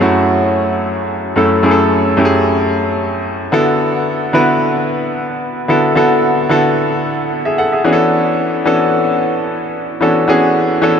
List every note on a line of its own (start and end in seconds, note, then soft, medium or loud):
0.00 1.36 F#2 medium
0.00 1.36 A3 medium
0.00 1.37 C#4 medium
0.00 0.02 E4 medium
0.00 0.88 E4 medium
0.00 0.88 F#4 loud
0.00 1.65 G#4 medium
1.36 1.58 F#2 medium
1.36 1.58 A3 medium
1.36 1.58 C#4 medium
1.36 1.59 E4 medium
1.36 1.59 A4 medium
1.63 2.07 F#2 medium
1.63 2.07 A3 medium
1.63 2.07 C#4 medium
1.63 2.07 E4 medium
1.63 1.71 G#4 medium
1.71 2.11 A4 medium
2.17 3.04 F#2 medium
2.17 3.04 A3 medium
2.17 3.04 C#4 medium
2.17 3.04 E4 medium
2.17 2.25 G4 medium
2.25 3.08 G#4 loud
3.52 4.18 D3 medium
3.52 4.18 B3 medium
3.52 4.18 E4 medium
3.52 4.18 F#4 medium
3.52 4.18 A4 loud
4.33 5.20 D3 medium
4.33 5.20 B3 medium
4.33 5.20 E4 medium
4.33 5.21 F#4 medium
4.33 5.21 B4 loud
5.68 5.90 D3 medium
5.68 5.91 B3 medium
5.68 5.91 E4 medium
5.68 5.91 F#4 medium
5.68 5.91 A4 medium
5.95 6.39 D3 medium
5.95 6.39 B3 medium
5.95 6.40 E4 medium
5.95 6.40 F#4 medium
5.95 6.40 A4 loud
6.49 7.36 D3 medium
6.49 7.37 B3 medium
6.49 7.37 E4 medium
6.49 7.37 F#4 medium
6.49 7.32 A4 loud
7.45 7.58 G#4 medium
7.45 7.57 E5 medium
7.58 7.72 A4 medium
7.58 7.71 F#5 medium
7.72 7.85 G#4 medium
7.72 7.98 E5 medium
7.84 8.50 E3 medium
7.84 8.50 B3 medium
7.84 8.50 C#4 medium
7.84 8.51 D4 medium
7.84 8.51 F#4 medium
7.84 7.92 G#4 medium
7.93 8.54 A4 loud
8.65 9.52 E3 medium
8.65 9.53 B3 medium
8.65 9.53 C#4 medium
8.65 9.53 D4 medium
8.65 9.53 F#4 medium
8.65 9.53 A4 loud
10.01 10.23 E3 medium
10.01 10.23 B3 medium
10.01 10.23 C#4 medium
10.01 10.23 D4 medium
10.01 10.23 F#4 medium
10.01 10.24 A4 medium
10.28 10.72 E3 medium
10.28 10.72 B3 medium
10.28 10.72 C#4 medium
10.28 10.72 D4 medium
10.28 10.72 F#4 medium
10.28 10.72 G#4 loud
10.82 11.00 E3 medium
10.82 11.00 B3 medium
10.82 11.00 C#4 medium
10.82 11.00 D4 medium
10.82 11.00 F#4 medium
10.82 11.00 A4 loud